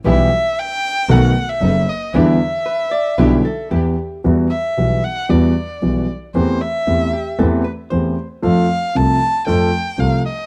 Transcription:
X:1
M:4/4
L:1/16
Q:1/4=115
K:Em
V:1 name="Violin"
e4 g4 f3 e3 ^d2 | e12 z4 | z2 e4 f2 d6 z2 | c2 e6 z8 |
=f4 a4 g4 f2 ^d2 |]
V:2 name="Hollow-body jazz guitar"
z16 | z4 B2 d2 B2 A2 G4 | z16 | z6 G2 A2 B2 c3 z |
z16 |]
V:3 name="String section"
[B,EG]2 z6 [B,^DA]2 z2 [B,DA]2 z2 | [DEG]2 z6 [DEG]2 z2 [DEG]2 z2 | z16 | z16 |
z16 |]
V:4 name="Grand piano" clef=bass
[B,,,B,,E,G,B,G]2 z6 [B,,,B,,^D,A,B,F]2 z2 [F,,,F,,]2 z2 | [E,,D,E,G,B,E]2 z6 [B,,,B,,D,G,B,E]2 z2 [E,,E,]2 z2 | [E,,E,G,B,F]2 z2 [B,,,B,,E,G,B,F]2 z2 [E,,E,G,B,F]2 z2 [B,,,B,,E,G,B,F]2 z2 | [E,,E,A,CG]2 z2 [E,,E,A,CG]2 z2 [E,,E,A,CG]2 z2 [E,,E,A,CG]2 z2 |
[=F,,=F,A,CA]2 z2 [C,,C,F,A,CA]2 z2 [F,,F,A,CA]2 z2 [C,,C,F,A,CA]2 z2 |]
V:5 name="Double bass" clef=bass
B,,,2 z6 B,,,2 z2 F,,,2 z2 | E,,2 z6 B,,,2 z2 E,,2 z2 | E,,2 z2 B,,,2 z2 E,,2 z2 B,,,2 z2 | E,,2 z2 E,,2 z2 E,,2 z2 E,,2 z2 |
=F,,2 z2 C,,2 z2 F,,2 z2 C,,2 z2 |]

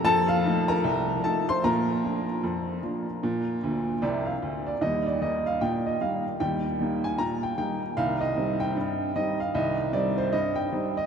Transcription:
X:1
M:2/4
L:1/16
Q:"Swing 16ths" 1/4=76
K:Bb
V:1 name="Upright piano"
[Aa] [Ff]2 [Bb]3 [Aa] [cc'] | [Bb]8- | [Bb]4 d f2 d | [K:Eb] e d e f g e f2 |
g3 a b g g2 | f e2 g3 e f | e2 d c e g2 e |]
V:2 name="Upright piano" clef=bass
F,,2 [F,A,E]2 C,,2 [F,A,E]2 | B,,2 [F,B,D]2 F,,2 [F,B,D]2 | B,,2 [D,,D,]2 [C,,C,]2 [D,,D,]2 | [K:Eb] [E,,G,]2 [G,B,E]2 B,,2 [G,B,E]2 |
[E,,G,]2 [G,B,E]2 B,,2 [G,B,E]2 | [C,,E,]2 [G,CE]2 G,,2 [G,CE]2 | [C,,E,]2 [G,CE]2 G,,2 [G,CE]2 |]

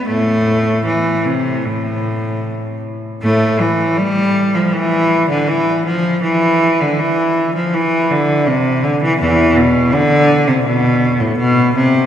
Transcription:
X:1
M:4/4
L:1/16
Q:1/4=80
K:Am
V:1 name="Cello" clef=bass
[A,,A,]4 E,2 C,2 A,,6 z2 | [A,,A,]2 E,2 G,3 F, E,3 D, E,2 F,2 | E,3 D, E,3 F, E,2 D,2 C,2 D, E, | [E,,E,]2 B,,2 D,3 C, B,,3 A,, B,,2 C,2 |]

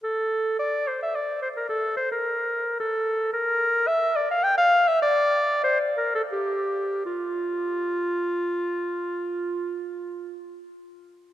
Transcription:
X:1
M:3/4
L:1/16
Q:1/4=100
K:F
V:1 name="Clarinet"
A4 d2 c e d2 c B | A2 c B4- B A4 | B4 e2 d f g f2 e | d4 c2 B A G4 |
F12- | F12 |]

